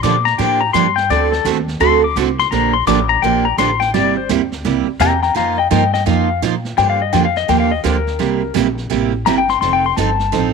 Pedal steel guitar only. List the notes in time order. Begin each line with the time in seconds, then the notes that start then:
0.03 D6
0.25 A#5
0.38 G5
0.61 A#5
0.73 C6
0.96 G5
1.10 D5
1.32 A4
1.81 C6
2.04 D6
2.40 C6
2.51 A#5
2.73 C6
2.87 D6
3.09 A#5
3.22 G5
3.45 A#5
3.58 C6
3.80 G5
3.94 D5
4.17 C5
5.01 G5 A#5
5.23 G5 A#5
5.37 F5 A#5
5.58 D#5 G5
5.71 D#5 G5
5.94 D#5 G5
6.06 F5
6.78 G5
6.90 F5
7.02 D#5
7.13 G5
7.25 F5
7.37 D#5
7.49 G5
7.60 F5
7.72 D#5
7.84 A#4
9.26 A#5
9.38 G5
9.50 C6
9.61 C6
9.73 G5
9.86 C6
9.97 A5